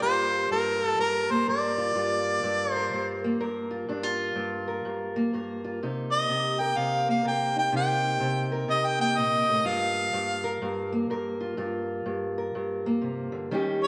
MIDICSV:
0, 0, Header, 1, 3, 480
1, 0, Start_track
1, 0, Key_signature, -2, "minor"
1, 0, Tempo, 481541
1, 21, Time_signature, 4, 2, 24, 8
1, 13830, End_track
2, 0, Start_track
2, 0, Title_t, "Harmonica"
2, 0, Program_c, 0, 22
2, 22, Note_on_c, 0, 72, 101
2, 471, Note_off_c, 0, 72, 0
2, 518, Note_on_c, 0, 70, 88
2, 847, Note_off_c, 0, 70, 0
2, 847, Note_on_c, 0, 69, 88
2, 961, Note_off_c, 0, 69, 0
2, 999, Note_on_c, 0, 70, 95
2, 1310, Note_on_c, 0, 72, 83
2, 1325, Note_off_c, 0, 70, 0
2, 1478, Note_off_c, 0, 72, 0
2, 1488, Note_on_c, 0, 74, 81
2, 2714, Note_off_c, 0, 74, 0
2, 2714, Note_on_c, 0, 72, 81
2, 3366, Note_off_c, 0, 72, 0
2, 6102, Note_on_c, 0, 75, 89
2, 6578, Note_on_c, 0, 79, 93
2, 6593, Note_off_c, 0, 75, 0
2, 6753, Note_on_c, 0, 77, 96
2, 6768, Note_off_c, 0, 79, 0
2, 7056, Note_off_c, 0, 77, 0
2, 7076, Note_on_c, 0, 77, 90
2, 7230, Note_off_c, 0, 77, 0
2, 7255, Note_on_c, 0, 79, 85
2, 7526, Note_off_c, 0, 79, 0
2, 7563, Note_on_c, 0, 79, 84
2, 7705, Note_off_c, 0, 79, 0
2, 7743, Note_on_c, 0, 79, 88
2, 8468, Note_off_c, 0, 79, 0
2, 8680, Note_on_c, 0, 75, 99
2, 8844, Note_on_c, 0, 79, 88
2, 8859, Note_off_c, 0, 75, 0
2, 8978, Note_off_c, 0, 79, 0
2, 8984, Note_on_c, 0, 79, 86
2, 9151, Note_on_c, 0, 75, 92
2, 9165, Note_off_c, 0, 79, 0
2, 9632, Note_on_c, 0, 77, 93
2, 9647, Note_off_c, 0, 75, 0
2, 10585, Note_off_c, 0, 77, 0
2, 13797, Note_on_c, 0, 75, 90
2, 13830, Note_off_c, 0, 75, 0
2, 13830, End_track
3, 0, Start_track
3, 0, Title_t, "Steel-string acoustic guitar"
3, 0, Program_c, 1, 25
3, 0, Note_on_c, 1, 58, 53
3, 8, Note_on_c, 1, 43, 74
3, 19, Note_on_c, 1, 65, 54
3, 496, Note_off_c, 1, 43, 0
3, 499, Note_on_c, 1, 43, 69
3, 817, Note_off_c, 1, 65, 0
3, 821, Note_on_c, 1, 65, 54
3, 980, Note_off_c, 1, 43, 0
3, 984, Note_on_c, 1, 43, 70
3, 1292, Note_off_c, 1, 58, 0
3, 1296, Note_on_c, 1, 58, 60
3, 1465, Note_off_c, 1, 43, 0
3, 1469, Note_on_c, 1, 43, 71
3, 1476, Note_on_c, 1, 70, 58
3, 1771, Note_off_c, 1, 65, 0
3, 1775, Note_on_c, 1, 65, 55
3, 1936, Note_off_c, 1, 43, 0
3, 1940, Note_on_c, 1, 43, 67
3, 1945, Note_off_c, 1, 65, 0
3, 1949, Note_on_c, 1, 65, 64
3, 2417, Note_off_c, 1, 43, 0
3, 2421, Note_on_c, 1, 43, 68
3, 2741, Note_off_c, 1, 70, 0
3, 2745, Note_on_c, 1, 70, 57
3, 2920, Note_off_c, 1, 43, 0
3, 2924, Note_on_c, 1, 43, 66
3, 3229, Note_off_c, 1, 58, 0
3, 3233, Note_on_c, 1, 58, 62
3, 3380, Note_off_c, 1, 43, 0
3, 3391, Note_off_c, 1, 70, 0
3, 3391, Note_on_c, 1, 43, 66
3, 3395, Note_on_c, 1, 70, 65
3, 3683, Note_off_c, 1, 65, 0
3, 3695, Note_on_c, 1, 65, 60
3, 3853, Note_off_c, 1, 65, 0
3, 3860, Note_off_c, 1, 43, 0
3, 3872, Note_on_c, 1, 43, 67
3, 3879, Note_on_c, 1, 62, 63
3, 4020, Note_off_c, 1, 62, 0
3, 4020, Note_on_c, 1, 65, 50
3, 4328, Note_off_c, 1, 43, 0
3, 4340, Note_on_c, 1, 43, 76
3, 4658, Note_off_c, 1, 70, 0
3, 4662, Note_on_c, 1, 70, 60
3, 4824, Note_off_c, 1, 43, 0
3, 4836, Note_on_c, 1, 43, 69
3, 5140, Note_off_c, 1, 58, 0
3, 5144, Note_on_c, 1, 58, 64
3, 5304, Note_off_c, 1, 43, 0
3, 5316, Note_on_c, 1, 43, 64
3, 5320, Note_off_c, 1, 70, 0
3, 5324, Note_on_c, 1, 70, 63
3, 5616, Note_off_c, 1, 65, 0
3, 5626, Note_on_c, 1, 65, 55
3, 5778, Note_off_c, 1, 65, 0
3, 5796, Note_off_c, 1, 43, 0
3, 5807, Note_on_c, 1, 48, 66
3, 5812, Note_on_c, 1, 63, 63
3, 5837, Note_off_c, 1, 70, 0
3, 6268, Note_off_c, 1, 48, 0
3, 6272, Note_on_c, 1, 48, 66
3, 6580, Note_on_c, 1, 70, 59
3, 6738, Note_off_c, 1, 48, 0
3, 6742, Note_on_c, 1, 48, 67
3, 7055, Note_off_c, 1, 58, 0
3, 7059, Note_on_c, 1, 58, 55
3, 7208, Note_off_c, 1, 48, 0
3, 7220, Note_on_c, 1, 48, 64
3, 7226, Note_off_c, 1, 70, 0
3, 7230, Note_on_c, 1, 70, 62
3, 7526, Note_off_c, 1, 63, 0
3, 7538, Note_on_c, 1, 63, 56
3, 7687, Note_off_c, 1, 48, 0
3, 7691, Note_off_c, 1, 63, 0
3, 7699, Note_on_c, 1, 48, 78
3, 7709, Note_on_c, 1, 63, 61
3, 7729, Note_off_c, 1, 70, 0
3, 8163, Note_off_c, 1, 48, 0
3, 8175, Note_on_c, 1, 48, 76
3, 8492, Note_on_c, 1, 70, 63
3, 8642, Note_off_c, 1, 48, 0
3, 8654, Note_on_c, 1, 48, 65
3, 8961, Note_off_c, 1, 58, 0
3, 8965, Note_on_c, 1, 58, 55
3, 9144, Note_on_c, 1, 46, 61
3, 9447, Note_off_c, 1, 46, 0
3, 9458, Note_on_c, 1, 45, 65
3, 9602, Note_off_c, 1, 63, 0
3, 9613, Note_off_c, 1, 45, 0
3, 9617, Note_off_c, 1, 48, 0
3, 9617, Note_on_c, 1, 43, 73
3, 9621, Note_on_c, 1, 65, 62
3, 10095, Note_off_c, 1, 43, 0
3, 10099, Note_on_c, 1, 43, 72
3, 10402, Note_off_c, 1, 70, 0
3, 10405, Note_on_c, 1, 70, 65
3, 10579, Note_off_c, 1, 43, 0
3, 10583, Note_on_c, 1, 43, 75
3, 10886, Note_off_c, 1, 58, 0
3, 10890, Note_on_c, 1, 58, 59
3, 11054, Note_off_c, 1, 43, 0
3, 11064, Note_on_c, 1, 43, 69
3, 11068, Note_off_c, 1, 70, 0
3, 11072, Note_on_c, 1, 70, 66
3, 11357, Note_off_c, 1, 65, 0
3, 11369, Note_on_c, 1, 65, 61
3, 11520, Note_off_c, 1, 65, 0
3, 11522, Note_off_c, 1, 43, 0
3, 11534, Note_on_c, 1, 43, 71
3, 11540, Note_on_c, 1, 65, 59
3, 12006, Note_off_c, 1, 43, 0
3, 12018, Note_on_c, 1, 43, 65
3, 12336, Note_off_c, 1, 70, 0
3, 12340, Note_on_c, 1, 70, 58
3, 12498, Note_off_c, 1, 43, 0
3, 12509, Note_on_c, 1, 43, 66
3, 12805, Note_off_c, 1, 58, 0
3, 12821, Note_on_c, 1, 58, 60
3, 12973, Note_on_c, 1, 48, 57
3, 13274, Note_off_c, 1, 48, 0
3, 13278, Note_on_c, 1, 50, 67
3, 13438, Note_off_c, 1, 65, 0
3, 13446, Note_off_c, 1, 70, 0
3, 13456, Note_off_c, 1, 50, 0
3, 13464, Note_off_c, 1, 43, 0
3, 13468, Note_off_c, 1, 58, 0
3, 13470, Note_on_c, 1, 51, 76
3, 13472, Note_on_c, 1, 55, 64
3, 13478, Note_on_c, 1, 61, 57
3, 13492, Note_on_c, 1, 63, 60
3, 13499, Note_on_c, 1, 67, 67
3, 13830, Note_off_c, 1, 51, 0
3, 13830, Note_off_c, 1, 55, 0
3, 13830, Note_off_c, 1, 61, 0
3, 13830, Note_off_c, 1, 63, 0
3, 13830, Note_off_c, 1, 67, 0
3, 13830, End_track
0, 0, End_of_file